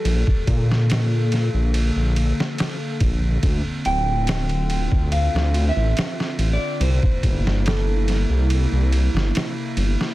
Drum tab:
RD |x-x-x-x-x-x-x-x-|x-x-xxx-x-x-x-x-|x-x-x-x-x-x-x-x-|
SD |---oo-o----oo---|----o----o--oo--|---oo-o----oo--o|
BD |-oo-----------o-|o------o--------|-oo-------------|